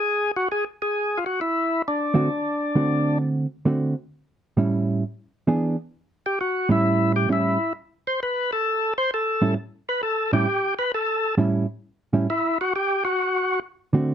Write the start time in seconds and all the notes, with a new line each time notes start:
Already playing: G#4
0.36 F#4
0.52 G#4
0.82 G#4
1.17 F4
1.26 F#4
1.41 E4
1.88 D4
2.14 D3 A3 C4 F#4
2.75 D3 A3 C4 F#4
3.65 D3 A3 C4 F#4
4.57 A2 G3 C#4 E4
5.47 E3 B3 D4 G#4
6.26 G4
6.41 F#4
6.69 A2 G3 C#4 E4
7.16 G4
7.29 A2 G3 C#4 E4
8.07 C5
8.23 B4
8.53 A4
8.98 C5
9.14 A4
9.42 A2 G3 C#4 E4
9.89 B4
10.03 A4
10.33 A2 G3 C#4 E4 G4
10.79 B4
10.94 A4
11.38 A2 G3 C#4 E4
12.13 A2 G3 C#4 E4
12.30 E4
12.61 F#4
12.76 G4
13.05 F#4
13.93 D3 A3 C4 F#4